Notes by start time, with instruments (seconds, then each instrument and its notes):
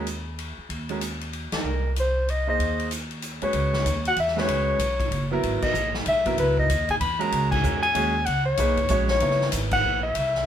Already playing: upright bass D#2
0.07 hi-hat pedal, ride
0.39 ride
0.58 muted upright bass stroke
0.69 upright bass D#2, ride
0.89 grand piano G#3 C#4 F#4 A#4, ride
1.01 hi-hat pedal, ride
1.21 ride
1.33 ride
1.52 upright bass E2, soprano saxophone A#4, snare, ride
1.64 upright bass C2
1.96 soprano saxophone C5, hi-hat pedal, ride
2.29 soprano saxophone D#5, ride
2.47 grand piano A#3 D#4 G#4 C5, soprano saxophone D#5
2.59 upright bass D#2, ride
2.80 ride
2.91 hi-hat pedal, ride
3.11 ride
3.22 hi-hat pedal, ride
3.42 upright bass G#2, grand piano G#3 C#4 F#4 B4, soprano saxophone C#5, ride
3.53 upright bass C#2, ride
3.73 snare
3.85 upright bass D#2, hi-hat pedal, ride
4.05 soprano saxophone F#5, ride
4.17 upright bass E2, soprano saxophone E5, ride
4.28 snare
4.36 grand piano G#3 C#4 F#4 B4, soprano saxophone C#5, snare
4.48 upright bass C#2, ride
4.79 upright bass B1, hi-hat pedal, ride
5.00 kick, ride
5.11 upright bass F#1, ride
5.31 grand piano F#3 B3 E4 A#4
5.43 upright bass G#1, ride
5.62 soprano saxophone D#5, muted upright bass stroke, kick, crash
5.74 upright bass A#1, hi-hat pedal
5.94 snare
6.06 upright bass B1, soprano saxophone E5, ride
6.25 grand piano F#3 B3 E4 A#4, kick, ride
6.38 upright bass C#2, soprano saxophone B4, ride
6.57 soprano saxophone D#5, kick
6.69 upright bass D#2, hi-hat pedal, ride
6.89 soprano saxophone G#5, kick, ride
7.00 upright bass E2, soprano saxophone B5, ride
7.19 grand piano G#3 C#4 F#4 A#4, soprano saxophone A#5, ride
7.32 upright bass C#2, ride
7.51 soprano saxophone G#5, kick, crash
7.63 upright bass E2, grand piano G#3 C#4 F#4 A#4, hi-hat pedal
7.83 soprano saxophone G#5, ride
7.95 upright bass D#2, grand piano G#3 C#4 F#4 G#4, ride
8.26 upright bass C#2, soprano saxophone F#5, ride
8.45 soprano saxophone C#5
8.57 upright bass B1, grand piano A#3 D#4 G#4 B4, hi-hat pedal, ride
8.77 kick, ride
8.89 upright bass A#1, grand piano G#3 C#4 F#4 C#5, hi-hat pedal, ride
9.08 soprano saxophone C#5, snare
9.20 upright bass F#1, grand piano B3 E4 A#4 C#5, ride
9.31 snare
9.41 snare
9.52 upright bass G#1, hi-hat pedal, ride
9.71 soprano saxophone F#5, kick, crash
9.84 upright bass A#1
10.03 soprano saxophone E5
10.15 upright bass C2, ride
10.35 snare